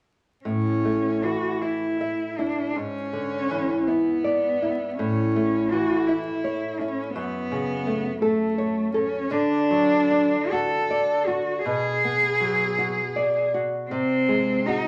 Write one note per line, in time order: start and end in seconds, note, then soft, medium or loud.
0.45 2.72 A2 soft
0.45 1.25 C#4 medium
0.85 1.47 A3 soft
1.23 1.85 E3 soft
1.23 1.63 F#4 soft
1.62 2.40 E4 soft
1.62 2.24 E4 soft
2.01 2.61 E5 soft
2.38 2.77 D4 soft
2.38 2.76 E4 soft
2.76 4.95 G#2 soft
2.76 3.89 C#4 medium
3.13 3.73 D3 soft
3.50 4.10 E3 soft
3.88 4.98 B3 medium
3.88 4.47 E4 soft
4.24 4.84 D5 soft
4.62 4.99 E4 soft
4.98 7.11 A2 soft
4.98 5.72 C#4 medium
5.36 5.93 A3 soft
5.71 6.30 E3 soft
5.71 6.08 F#4 medium
6.07 6.81 E4 soft
6.07 6.66 E4 soft
6.44 7.01 C#5 soft
6.80 7.15 C#4 soft
6.80 7.16 E4 soft
7.16 9.28 F#2 soft
7.16 8.20 B3 medium
7.52 8.08 C#3 soft
7.87 8.44 A3 soft
8.22 8.93 A3 soft
8.22 8.58 A4 soft
8.58 9.17 C#5 soft
8.94 9.33 C#4 medium
8.94 9.32 A4 soft
9.31 11.60 D3 medium
9.31 10.52 D4 medium
9.71 10.36 F#3 soft
10.11 10.75 D4 soft
10.51 11.13 F#4 soft
10.51 11.29 A4 medium
10.90 11.50 D5 soft
11.27 11.64 F#4 medium
11.27 11.65 F#4 soft
11.65 13.86 B2 medium
11.65 13.48 G#4 medium
12.04 12.64 B3 soft
12.41 13.00 F#3 soft
12.79 13.38 F#4 soft
13.16 13.75 D5 soft
13.54 13.91 F#4 soft
13.90 14.88 C3 soft
13.90 14.68 C4 medium
14.28 14.66 G#3 soft
14.66 14.88 G#3 soft
14.66 14.88 D#4 medium
14.66 14.88 F#4 soft